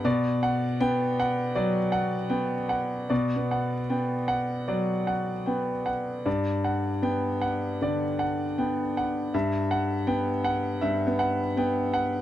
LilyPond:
<<
  \new Staff \with { instrumentName = "Grand piano" } { \time 4/4 \key b \minor \tempo 4 = 78 d''8 fis''4 fis''8 d''8 fis''8 g''8 fis''8 | d''8 fis''8 g''8 fis''8 d''8 fis''8 g''8 fis''8 | d''8 fis''4 fis''8 d''8 fis''8 g''8 fis''8 | e''8 fis''4 fis''8 e''8 fis''8 g''8 fis''8 | }
  \new Staff \with { instrumentName = "Grand piano" } { \time 4/4 \key b \minor b,4 <b g''>8 r8 fis8 r8 b8 r8 | \tuplet 3/2 { b,8 b4 } b8 r8 fis8 r8 b8 r8 | g,4 <b g''>8 r8 d8 r8 b8 r8 | g,4 <b g''>8 r8 \tuplet 3/2 { g,8 b4 } b8 r8 | }
>>